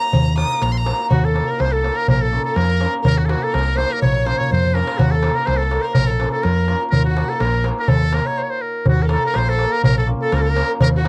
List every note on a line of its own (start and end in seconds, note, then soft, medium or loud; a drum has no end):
0.00 0.36 A#5 loud
0.13 0.43 D#2 medium
0.13 darbuka dum medium
0.27 darbuka tek soft
0.35 0.56 A#3 medium
0.35 0.56 D#4 medium
0.35 0.57 F#4 medium
0.35 0.57 A#4 medium
0.35 0.63 D#6 medium
0.35 darbuka tek medium
0.52 darbuka tek soft
0.62 0.91 A#1 medium
0.62 0.73 A#5 medium
0.62 darbuka tek medium
0.71 0.78 C6 medium
0.76 1.09 A#5 medium
0.76 darbuka tek soft
0.84 1.05 A#3 medium
0.84 1.05 D#4 medium
0.84 1.05 F#4 medium
0.84 1.06 A#4 medium
0.84 darbuka tek medium
1.10 1.40 D#2 medium
1.10 1.27 F#4 medium
1.10 1.26 F#4 medium
1.10 darbuka dum medium
1.24 1.52 A4 medium
1.24 1.48 A4 medium
1.24 darbuka tek soft
1.33 1.53 A#3 medium
1.33 1.54 D#4 medium
1.33 1.54 F#4 medium
1.33 1.54 A#4 medium
1.33 darbuka tek medium
1.47 1.60 A#4 medium
1.47 1.62 A#4 medium
1.59 1.89 C2 medium
1.59 1.72 C5 medium
1.59 1.74 C5 loud
1.59 darbuka tek medium
1.71 1.96 A4 medium
1.71 1.98 A4 medium
1.71 darbuka tek soft
1.83 2.02 A#3 medium
1.83 2.03 D#4 medium
1.83 2.03 F#4 medium
1.83 2.03 A#4 medium
1.83 darbuka tek medium
1.95 2.07 A#4 medium
1.95 2.07 A#4 loud
2.08 2.37 A#1 medium
2.08 2.23 A#4 medium
2.08 2.23 A#4 loud
2.08 darbuka dum medium
2.21 2.44 A4 medium
2.21 2.45 A4 medium
2.21 darbuka tek soft
2.31 2.51 A#3 medium
2.31 2.51 C#4 medium
2.31 2.52 F4 medium
2.31 2.52 A#4 medium
2.45 2.57 A4 medium
2.45 2.56 A4 medium
2.54 2.86 F2 medium
2.54 2.93 A#4 medium
2.54 2.94 A#4 medium
2.54 darbuka tek medium
2.69 darbuka tek soft
2.80 2.99 A#3 medium
2.80 3.00 C#4 medium
2.80 3.00 F4 medium
2.80 3.00 A#4 medium
2.80 darbuka tek medium
3.03 3.34 D#2 medium
3.03 3.18 A#4 loud
3.03 3.19 A#4 loud
3.03 darbuka dum medium
3.17 3.27 F#4 medium
3.17 3.26 F#4 medium
3.17 darbuka tek soft
3.25 3.47 A#3 medium
3.25 3.48 D#4 medium
3.25 3.48 F#4 medium
3.25 3.31 A4 medium
3.29 3.45 F#4 medium
3.29 3.44 F#4 medium
3.29 3.48 A#4 medium
3.29 darbuka tek medium
3.42 3.53 A4 medium
3.42 3.55 A4 medium
3.52 3.83 C2 medium
3.52 3.76 A#4 medium
3.52 3.79 A#4 medium
3.52 darbuka tek medium
3.68 darbuka tek soft
3.75 3.96 A#3 medium
3.75 3.96 D#4 medium
3.75 3.97 F#4 medium
3.75 3.97 A#4 medium
3.75 3.91 C5 medium
3.75 3.94 C5 medium
3.75 darbuka tek medium
3.89 3.99 A#4 medium
3.89 4.01 A#4 loud
3.99 4.32 A#1 medium
3.99 4.27 C#5 medium
3.99 4.28 C#5 medium
3.99 darbuka dum medium
4.16 darbuka tek soft
4.25 4.45 A#3 medium
4.25 4.45 C#4 medium
4.25 4.45 F4 medium
4.25 4.46 A#4 medium
4.25 4.41 C5 medium
4.25 4.40 C5 loud
4.25 darbuka tek medium
4.38 4.50 C#5 medium
4.38 darbuka dum medium
4.51 4.81 F2 medium
4.51 4.78 C5 medium
4.51 4.76 C5 loud
4.51 darbuka dum medium
4.65 darbuka dum medium
4.74 4.94 A#3 medium
4.74 4.94 C#4 medium
4.74 4.94 F4 medium
4.74 4.99 A#4 medium
4.74 4.94 A#4 medium
4.74 5.00 A#4 medium
4.74 darbuka tek medium
4.87 darbuka tek medium
4.98 5.29 D#2 medium
4.98 5.13 F#4 medium
4.98 5.16 F#4 medium
4.98 darbuka dum loud
5.11 5.37 A4 medium
5.11 darbuka tek soft
5.23 5.42 A#3 medium
5.23 5.43 D#4 medium
5.23 5.43 F#4 medium
5.23 5.44 A#4 medium
5.23 darbuka tek medium
5.35 5.47 A#4 medium
5.35 5.48 A#4 medium
5.46 5.77 C2 medium
5.46 5.58 C5 medium
5.46 5.64 C5 medium
5.46 darbuka tek medium
5.57 5.83 A4 medium
5.61 5.84 A4 medium
5.61 darbuka tek soft
5.70 5.90 A#3 medium
5.70 5.91 D#4 medium
5.70 5.91 F#4 medium
5.70 5.91 A#4 medium
5.70 darbuka tek medium
5.82 5.96 A#4 medium
5.82 5.85 C5 medium
5.82 5.86 C5 medium
5.94 6.26 A#1 medium
5.94 6.08 A#4 loud
5.94 6.12 A#4 medium
5.94 darbuka dum loud
6.07 6.31 A4 medium
6.07 6.32 A4 medium
6.07 darbuka tek soft
6.20 6.40 A#3 medium
6.20 6.39 C#4 medium
6.20 6.40 F4 medium
6.20 6.40 A#4 medium
6.20 darbuka tek medium
6.31 6.44 A4 medium
6.31 6.46 A4 medium
6.42 6.74 F2 medium
6.42 6.81 A#4 medium
6.42 6.83 A#4 medium
6.42 darbuka tek medium
6.57 darbuka tek soft
6.68 6.88 A#3 medium
6.68 6.88 C#4 medium
6.68 6.88 F4 medium
6.68 6.89 A#4 medium
6.68 darbuka tek medium
6.90 7.22 D#2 medium
6.90 7.04 A#4 loud
6.90 darbuka dum medium
6.94 7.06 A#4 medium
7.05 7.31 F#4 medium
7.05 darbuka tek soft
7.09 7.34 F#4 medium
7.16 7.36 A#3 medium
7.16 7.36 D#4 medium
7.16 7.37 F#4 medium
7.16 7.37 A#4 medium
7.16 darbuka tek medium
7.29 7.41 A4 medium
7.29 7.44 A4 medium
7.40 7.70 A#1 loud
7.40 7.65 A#4 medium
7.40 7.66 A#4 medium
7.40 darbuka tek medium
7.54 darbuka tek soft
7.64 7.85 A#3 medium
7.64 7.85 D#4 medium
7.64 7.85 F#4 medium
7.64 7.86 A#4 medium
7.64 darbuka tek medium
7.79 7.89 A#4 medium
7.79 7.92 A#4 medium
7.88 8.19 D#2 medium
7.88 8.16 A4 loud
7.88 8.14 A4 medium
7.88 darbuka dum loud
8.02 darbuka tek soft
8.13 8.33 A#3 medium
8.13 8.34 D#4 medium
8.13 8.34 F#4 medium
8.13 8.26 A#4 medium
8.13 8.28 A#4 medium
8.13 8.34 A#4 medium
8.13 darbuka tek medium
8.25 8.37 C#5 medium
8.25 8.39 C#5 medium
8.25 darbuka tek soft
8.38 8.44 C5 medium
8.43 8.52 C#5 medium
8.50 8.63 C5 medium
8.61 8.87 A#4 medium
8.86 9.16 D#2 loud
8.86 9.04 F#4 medium
8.86 darbuka dum medium
8.91 9.06 F#4 medium
8.98 darbuka tek soft
9.02 9.08 A4 medium
9.02 9.04 A#4 medium
9.07 9.29 A#3 medium
9.07 9.30 D#4 medium
9.07 9.30 F#4 medium
9.07 9.16 A#4 medium
9.07 darbuka tek medium
9.11 9.25 A4 medium
9.11 9.27 A4 medium
9.11 9.30 A#4 medium
9.26 9.37 A#4 medium
9.26 9.40 A#4 medium
9.34 9.65 A#1 medium
9.34 9.50 C5 medium
9.34 darbuka tek medium
9.39 9.53 C5 medium
9.48 9.73 A4 loud
9.48 9.78 A4 medium
9.48 darbuka tek soft
9.58 9.78 A#3 medium
9.58 9.78 D#4 medium
9.58 9.79 F#4 medium
9.58 9.79 A#4 medium
9.58 darbuka tek medium
9.72 9.83 A#4 loud
9.77 9.85 A#4 medium
9.84 10.13 A#1 loud
9.84 9.97 A#4 loud
9.84 9.98 A#4 medium
9.84 darbuka dum medium
9.97 10.08 A4 medium
9.97 10.09 A4 medium
9.97 darbuka tek soft
10.07 10.27 A#3 medium
10.07 10.27 C#4 medium
10.07 10.27 F4 medium
10.07 10.27 A#4 medium
10.22 10.37 A4 medium
10.22 10.34 A4 medium
10.32 10.62 C#2 medium
10.32 10.39 A#4 medium
10.32 10.43 A#4 medium
10.32 darbuka tek medium
10.38 10.47 A4 medium
10.38 10.52 A4 medium
10.46 10.69 A#4 medium
10.46 darbuka tek soft
10.50 10.71 A#4 loud
10.55 10.75 A#3 medium
10.55 10.75 C#4 medium
10.55 10.76 F4 medium
10.55 10.76 A#4 medium
10.55 darbuka tek medium
10.80 11.08 D#2 medium
10.80 10.87 A#4 medium
10.80 10.88 A#4 loud
10.80 darbuka dum loud
10.94 11.08 F#4 medium
10.94 darbuka tek soft
11.04 11.08 A#3 medium
11.04 11.08 D#4 medium
11.04 11.08 F#4 medium